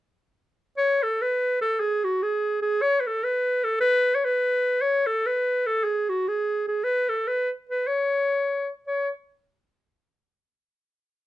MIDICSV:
0, 0, Header, 1, 2, 480
1, 0, Start_track
1, 0, Tempo, 500000
1, 10816, End_track
2, 0, Start_track
2, 0, Title_t, "Clarinet"
2, 0, Program_c, 0, 71
2, 741, Note_on_c, 0, 73, 79
2, 986, Note_on_c, 0, 69, 72
2, 1000, Note_off_c, 0, 73, 0
2, 1166, Note_on_c, 0, 71, 78
2, 1180, Note_off_c, 0, 69, 0
2, 1543, Note_off_c, 0, 71, 0
2, 1549, Note_on_c, 0, 69, 82
2, 1725, Note_on_c, 0, 68, 77
2, 1739, Note_off_c, 0, 69, 0
2, 1956, Note_on_c, 0, 66, 71
2, 1971, Note_off_c, 0, 68, 0
2, 2134, Note_on_c, 0, 68, 79
2, 2149, Note_off_c, 0, 66, 0
2, 2508, Note_off_c, 0, 68, 0
2, 2513, Note_on_c, 0, 68, 82
2, 2701, Note_on_c, 0, 73, 94
2, 2715, Note_off_c, 0, 68, 0
2, 2883, Note_on_c, 0, 71, 58
2, 2897, Note_off_c, 0, 73, 0
2, 2945, Note_on_c, 0, 69, 73
2, 2959, Note_off_c, 0, 71, 0
2, 3106, Note_on_c, 0, 71, 84
2, 3120, Note_off_c, 0, 69, 0
2, 3493, Note_on_c, 0, 69, 75
2, 3507, Note_off_c, 0, 71, 0
2, 3646, Note_off_c, 0, 69, 0
2, 3651, Note_on_c, 0, 71, 96
2, 3982, Note_on_c, 0, 73, 67
2, 3997, Note_off_c, 0, 71, 0
2, 4077, Note_on_c, 0, 71, 84
2, 4092, Note_off_c, 0, 73, 0
2, 4620, Note_on_c, 0, 73, 85
2, 4634, Note_off_c, 0, 71, 0
2, 4859, Note_on_c, 0, 69, 73
2, 4874, Note_off_c, 0, 73, 0
2, 5052, Note_on_c, 0, 71, 78
2, 5067, Note_off_c, 0, 69, 0
2, 5436, Note_on_c, 0, 69, 77
2, 5450, Note_off_c, 0, 71, 0
2, 5603, Note_on_c, 0, 68, 71
2, 5617, Note_off_c, 0, 69, 0
2, 5845, Note_on_c, 0, 66, 67
2, 5859, Note_off_c, 0, 68, 0
2, 6027, Note_on_c, 0, 68, 77
2, 6042, Note_off_c, 0, 66, 0
2, 6405, Note_off_c, 0, 68, 0
2, 6411, Note_on_c, 0, 68, 73
2, 6566, Note_on_c, 0, 71, 85
2, 6580, Note_off_c, 0, 68, 0
2, 6805, Note_on_c, 0, 69, 71
2, 6819, Note_off_c, 0, 71, 0
2, 6981, Note_on_c, 0, 71, 81
2, 6996, Note_off_c, 0, 69, 0
2, 7198, Note_off_c, 0, 71, 0
2, 7386, Note_on_c, 0, 71, 70
2, 7556, Note_on_c, 0, 73, 78
2, 7570, Note_off_c, 0, 71, 0
2, 8348, Note_off_c, 0, 73, 0
2, 8513, Note_on_c, 0, 73, 60
2, 8732, Note_off_c, 0, 73, 0
2, 10816, End_track
0, 0, End_of_file